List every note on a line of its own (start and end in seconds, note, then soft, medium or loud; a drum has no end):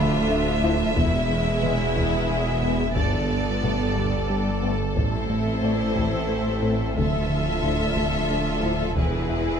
0.00 0.98 D1 medium
0.00 0.16 D2 medium
0.00 0.96 D2 medium
0.00 0.97 F3 medium
0.00 0.92 A3 medium
0.00 0.97 D4 medium
0.00 0.96 F4 medium
0.00 0.91 A4 medium
0.00 0.92 D5 soft
0.00 2.92 E5 medium
0.00 2.93 E5 medium
0.00 1.93 B5 medium
0.00 0.92 D6 medium
0.30 0.50 D3 medium
0.63 0.83 D2 medium
0.63 0.74 F3 medium
0.63 0.75 E4 medium
0.95 2.92 E1 medium
0.95 2.98 E1 medium
0.95 1.17 E2 medium
0.95 2.93 E2 medium
0.95 2.96 E3 medium
0.95 2.93 G#3 medium
0.95 4.96 B3 medium
0.95 2.96 E4 medium
0.95 2.97 G#4 medium
0.95 taiko medium
1.29 1.49 E2 medium
1.63 1.83 E2 medium
1.63 1.74 G#3 medium
1.63 1.75 B3 medium
1.63 taiko low-mid medium
1.96 2.16 E2 medium
1.96 taiko medium
2.29 2.49 E3 medium
2.62 2.83 E2 medium
2.62 2.75 G#3 medium
2.62 2.75 B3 medium
2.96 4.98 G1 medium
2.96 4.73 G1 medium
2.96 3.16 G2 medium
2.96 4.73 G2 medium
2.96 4.97 G3 medium
2.96 4.73 B3 medium
2.96 6.93 A4 medium
2.96 8.97 A4 medium
2.96 4.73 D5 medium
2.96 4.97 D5 medium
2.96 taiko medium
3.30 3.50 G2 medium
3.62 3.83 G2 medium
3.62 3.75 A3 medium
3.62 3.75 B3 medium
3.62 taiko low-mid medium
3.95 4.16 G2 medium
3.95 5.92 A5 soft
3.95 taiko medium
4.30 4.50 G3 medium
4.63 4.83 G2 medium
4.63 4.74 A3 medium
4.63 4.74 B3 medium
4.96 6.92 A1 medium
4.96 6.98 A1 medium
4.96 5.16 A2 medium
4.96 6.93 A2 medium
4.96 6.97 E3 medium
4.96 6.97 C4 medium
4.96 6.92 E4 soft
4.96 6.93 C5 medium
4.96 9.60 E5 medium
4.96 taiko medium
5.30 5.50 A2 medium
5.63 5.83 A2 medium
5.63 5.74 A3 medium
5.63 5.74 C4 medium
5.63 7.60 D5 medium
5.95 6.16 A2 medium
5.95 taiko medium
6.29 6.49 A3 medium
6.62 6.82 A2 medium
6.62 6.74 A3 medium
6.62 6.74 C4 medium
6.96 8.98 D1 medium
6.96 8.92 D2 medium
6.96 7.17 D2 medium
6.96 8.97 F3 medium
6.96 8.96 D4 medium
6.96 8.92 F4 medium
6.96 8.92 A4 medium
6.96 8.97 E5 medium
6.96 taiko medium
7.30 7.50 D2 medium
7.63 7.83 D2 medium
7.63 7.75 F3 medium
7.63 7.75 E4 medium
7.96 8.16 D2 medium
7.96 taiko medium
8.30 8.50 D3 medium
8.62 8.83 D2 medium
8.62 8.74 F3 medium
8.62 8.74 E4 medium
8.97 9.60 E1 medium
8.97 9.60 E2 medium
8.97 9.17 E2 medium
8.97 9.60 E3 medium
8.97 9.60 B3 medium
8.97 9.60 E4 medium
8.97 9.60 G#4 medium
8.97 9.60 B4 medium
8.97 taiko medium
9.29 9.50 E2 medium
9.29 9.60 E4 soft
9.29 9.60 E5 soft